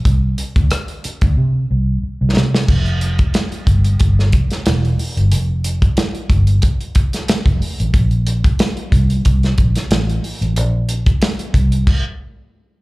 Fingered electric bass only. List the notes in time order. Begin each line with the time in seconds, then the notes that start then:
0.06 C2
0.56 D2
1.05 muted fingered electric bass stroke
1.23 D2
1.37 C3
1.71 C2
2.03 muted fingered electric bass stroke
2.21 C2
2.37 C3
2.69 F1
3.67 G1
4.01 G1
4.34 F1
4.67 E1
5.17 G1
5.32 F1
6.30 G1
7.29 muted fingered electric bass stroke
7.46 F1
7.80 A1
7.94 A#1
8.92 C2
9.26 C2
9.59 A#1
9.91 A1
10.41 A1
10.57 A#1
11.55 C2